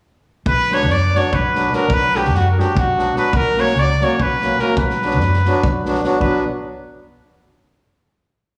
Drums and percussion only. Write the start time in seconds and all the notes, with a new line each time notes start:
0.46 kick
0.71 snare
0.81 snare
0.90 snare
1.15 snare
1.33 kick
1.55 snare
1.73 snare
1.90 kick
2.15 snare
2.25 snare
2.35 snare
2.59 snare
2.77 kick
2.99 snare
3.16 snare
3.33 kick
3.57 snare
3.66 snare
3.75 snare
4.01 snare
4.20 kick
4.42 snare
4.59 snare
4.77 kick
4.90 snare
5.02 snare
5.10 snare
5.20 snare
5.33 snare
5.45 snare
5.63 kick
5.85 snare
5.95 snare
6.04 snare
6.21 kick